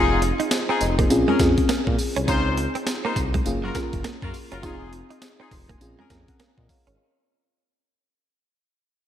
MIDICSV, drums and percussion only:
0, 0, Header, 1, 2, 480
1, 0, Start_track
1, 0, Tempo, 588235
1, 1860, Time_signature, 4, 2, 24, 8
1, 7404, End_track
2, 0, Start_track
2, 0, Title_t, "Drums"
2, 180, Note_on_c, 9, 42, 82
2, 261, Note_off_c, 9, 42, 0
2, 326, Note_on_c, 9, 42, 52
2, 408, Note_off_c, 9, 42, 0
2, 417, Note_on_c, 9, 38, 119
2, 420, Note_on_c, 9, 42, 84
2, 420, Note_on_c, 9, 54, 96
2, 499, Note_off_c, 9, 38, 0
2, 502, Note_off_c, 9, 42, 0
2, 502, Note_off_c, 9, 54, 0
2, 659, Note_on_c, 9, 42, 70
2, 662, Note_on_c, 9, 54, 69
2, 740, Note_off_c, 9, 42, 0
2, 743, Note_off_c, 9, 54, 0
2, 806, Note_on_c, 9, 36, 106
2, 806, Note_on_c, 9, 42, 60
2, 888, Note_off_c, 9, 36, 0
2, 888, Note_off_c, 9, 42, 0
2, 900, Note_on_c, 9, 54, 69
2, 901, Note_on_c, 9, 42, 78
2, 982, Note_off_c, 9, 42, 0
2, 982, Note_off_c, 9, 54, 0
2, 1137, Note_on_c, 9, 42, 78
2, 1139, Note_on_c, 9, 36, 108
2, 1139, Note_on_c, 9, 38, 77
2, 1139, Note_on_c, 9, 54, 71
2, 1219, Note_off_c, 9, 42, 0
2, 1221, Note_off_c, 9, 36, 0
2, 1221, Note_off_c, 9, 38, 0
2, 1221, Note_off_c, 9, 54, 0
2, 1286, Note_on_c, 9, 42, 56
2, 1288, Note_on_c, 9, 36, 92
2, 1368, Note_off_c, 9, 42, 0
2, 1369, Note_off_c, 9, 36, 0
2, 1379, Note_on_c, 9, 38, 122
2, 1379, Note_on_c, 9, 42, 83
2, 1380, Note_on_c, 9, 54, 90
2, 1461, Note_off_c, 9, 38, 0
2, 1461, Note_off_c, 9, 42, 0
2, 1461, Note_off_c, 9, 54, 0
2, 1527, Note_on_c, 9, 36, 98
2, 1608, Note_off_c, 9, 36, 0
2, 1620, Note_on_c, 9, 46, 68
2, 1623, Note_on_c, 9, 54, 73
2, 1702, Note_off_c, 9, 46, 0
2, 1705, Note_off_c, 9, 54, 0
2, 1766, Note_on_c, 9, 42, 63
2, 1848, Note_off_c, 9, 42, 0
2, 1860, Note_on_c, 9, 42, 70
2, 1860, Note_on_c, 9, 54, 67
2, 1861, Note_on_c, 9, 36, 110
2, 1942, Note_off_c, 9, 36, 0
2, 1942, Note_off_c, 9, 42, 0
2, 1942, Note_off_c, 9, 54, 0
2, 2101, Note_on_c, 9, 42, 79
2, 2182, Note_off_c, 9, 42, 0
2, 2246, Note_on_c, 9, 42, 48
2, 2328, Note_off_c, 9, 42, 0
2, 2339, Note_on_c, 9, 38, 119
2, 2341, Note_on_c, 9, 42, 87
2, 2342, Note_on_c, 9, 54, 96
2, 2420, Note_off_c, 9, 38, 0
2, 2423, Note_off_c, 9, 42, 0
2, 2423, Note_off_c, 9, 54, 0
2, 2580, Note_on_c, 9, 36, 100
2, 2580, Note_on_c, 9, 42, 66
2, 2583, Note_on_c, 9, 54, 64
2, 2662, Note_off_c, 9, 36, 0
2, 2662, Note_off_c, 9, 42, 0
2, 2665, Note_off_c, 9, 54, 0
2, 2727, Note_on_c, 9, 36, 100
2, 2728, Note_on_c, 9, 42, 55
2, 2809, Note_off_c, 9, 36, 0
2, 2810, Note_off_c, 9, 42, 0
2, 2821, Note_on_c, 9, 42, 73
2, 2821, Note_on_c, 9, 54, 69
2, 2902, Note_off_c, 9, 42, 0
2, 2902, Note_off_c, 9, 54, 0
2, 3058, Note_on_c, 9, 42, 76
2, 3060, Note_on_c, 9, 36, 105
2, 3060, Note_on_c, 9, 38, 77
2, 3060, Note_on_c, 9, 54, 68
2, 3140, Note_off_c, 9, 42, 0
2, 3141, Note_off_c, 9, 36, 0
2, 3142, Note_off_c, 9, 38, 0
2, 3142, Note_off_c, 9, 54, 0
2, 3206, Note_on_c, 9, 42, 59
2, 3208, Note_on_c, 9, 36, 95
2, 3288, Note_off_c, 9, 42, 0
2, 3290, Note_off_c, 9, 36, 0
2, 3299, Note_on_c, 9, 38, 111
2, 3299, Note_on_c, 9, 42, 83
2, 3299, Note_on_c, 9, 54, 87
2, 3381, Note_off_c, 9, 38, 0
2, 3381, Note_off_c, 9, 42, 0
2, 3381, Note_off_c, 9, 54, 0
2, 3447, Note_on_c, 9, 36, 100
2, 3528, Note_off_c, 9, 36, 0
2, 3540, Note_on_c, 9, 46, 66
2, 3543, Note_on_c, 9, 54, 69
2, 3622, Note_off_c, 9, 46, 0
2, 3624, Note_off_c, 9, 54, 0
2, 3685, Note_on_c, 9, 42, 60
2, 3767, Note_off_c, 9, 42, 0
2, 3780, Note_on_c, 9, 42, 70
2, 3780, Note_on_c, 9, 54, 74
2, 3781, Note_on_c, 9, 36, 120
2, 3861, Note_off_c, 9, 54, 0
2, 3862, Note_off_c, 9, 36, 0
2, 3862, Note_off_c, 9, 42, 0
2, 4020, Note_on_c, 9, 42, 84
2, 4102, Note_off_c, 9, 42, 0
2, 4166, Note_on_c, 9, 42, 48
2, 4248, Note_off_c, 9, 42, 0
2, 4258, Note_on_c, 9, 38, 120
2, 4260, Note_on_c, 9, 42, 86
2, 4261, Note_on_c, 9, 54, 93
2, 4339, Note_off_c, 9, 38, 0
2, 4342, Note_off_c, 9, 42, 0
2, 4342, Note_off_c, 9, 54, 0
2, 4500, Note_on_c, 9, 36, 93
2, 4500, Note_on_c, 9, 46, 71
2, 4503, Note_on_c, 9, 54, 66
2, 4581, Note_off_c, 9, 46, 0
2, 4582, Note_off_c, 9, 36, 0
2, 4584, Note_off_c, 9, 54, 0
2, 4647, Note_on_c, 9, 36, 94
2, 4648, Note_on_c, 9, 42, 59
2, 4729, Note_off_c, 9, 36, 0
2, 4729, Note_off_c, 9, 42, 0
2, 4741, Note_on_c, 9, 42, 67
2, 4741, Note_on_c, 9, 54, 72
2, 4822, Note_off_c, 9, 54, 0
2, 4823, Note_off_c, 9, 42, 0
2, 4978, Note_on_c, 9, 42, 83
2, 4980, Note_on_c, 9, 36, 99
2, 4980, Note_on_c, 9, 38, 73
2, 4980, Note_on_c, 9, 54, 72
2, 5060, Note_off_c, 9, 42, 0
2, 5061, Note_off_c, 9, 36, 0
2, 5061, Note_off_c, 9, 54, 0
2, 5062, Note_off_c, 9, 38, 0
2, 5126, Note_on_c, 9, 42, 55
2, 5128, Note_on_c, 9, 36, 84
2, 5208, Note_off_c, 9, 42, 0
2, 5210, Note_off_c, 9, 36, 0
2, 5219, Note_on_c, 9, 38, 118
2, 5219, Note_on_c, 9, 42, 78
2, 5220, Note_on_c, 9, 54, 88
2, 5301, Note_off_c, 9, 38, 0
2, 5301, Note_off_c, 9, 42, 0
2, 5301, Note_off_c, 9, 54, 0
2, 5367, Note_on_c, 9, 36, 92
2, 5449, Note_off_c, 9, 36, 0
2, 5460, Note_on_c, 9, 46, 67
2, 5461, Note_on_c, 9, 36, 89
2, 5463, Note_on_c, 9, 54, 69
2, 5542, Note_off_c, 9, 46, 0
2, 5543, Note_off_c, 9, 36, 0
2, 5545, Note_off_c, 9, 54, 0
2, 5606, Note_on_c, 9, 42, 60
2, 5688, Note_off_c, 9, 42, 0
2, 7404, End_track
0, 0, End_of_file